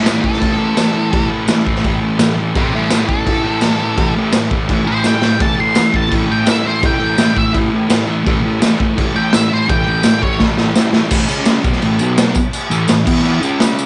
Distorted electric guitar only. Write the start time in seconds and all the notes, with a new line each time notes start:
0.03 A2 E3 A3
0.21 A2 E3 A3
0.39 A2 E3 A3
0.57 E3 A3
0.76 A2 E3 A3
0.94 E3 A3
1.12 A2 E3 A3
1.30 E3 A3
1.47 A2 E3 A3
1.65 A2 E3 A3
1.84 A2 E3 A3
2.01 E3 A3
2.18 A2 E3 A3
2.37 E3 A3
2.54 A2 E3 A3
2.73 E3 A3
2.90 A2 E3 A3
3.07 E3 A3
3.11 A2
3.25 A2 E3 A3
3.43 E3 A3
3.61 A2 E3 A3
3.80 E3 A3
3.97 A2 E3 A3
4.15 E3 A3
4.33 A2 E3 A3
4.51 A2 E3 A3
4.68 A2 E3 A3
4.86 E3 A3
5.04 A2 E3 A3
5.22 E3 A3
5.39 A2 E3 A3
5.58 E3 A3
5.74 A2 E3
5.79 A3
5.93 A2 E3 A3
6.09 A2 E3 A3
6.27 E3 A3
6.45 A2 E3 A3
6.63 E3 A3
6.81 A2 E3 A3
6.99 E3 A3
7.17 A2 E3 A3
7.34 A2 E3 A3
7.53 A2 E3 A3
7.71 E3 A3
7.88 A2 E3 A3
8.06 E3 A3
8.24 A2 E3 A3
8.43 E3 A3
8.60 A2 E3 A3
8.78 A2 E3 A3
8.96 A2 E3 A3
9.14 E3 A3
9.32 A2 E3 A3
9.50 E3 A3
9.68 A2 E3 A3
9.86 E3 A3
10.04 A2 E3 A3
10.21 A2 E3 A3
10.39 A2 E3 A3
10.58 E3 A3
10.75 A2 E3 A3
10.92 E3 A3
11.11 A2 E3 A3
11.28 C#3 G#3 C#4
11.64 B2 F#3 B3
11.82 A2 E3 A3
12.01 B2 F#3 B3
12.36 muted distorted electric guitar stroke
12.70 A2 E3 A3
12.88 A2 E3
13.06 E3 B3 E4
13.41 C#3 G#3 C#4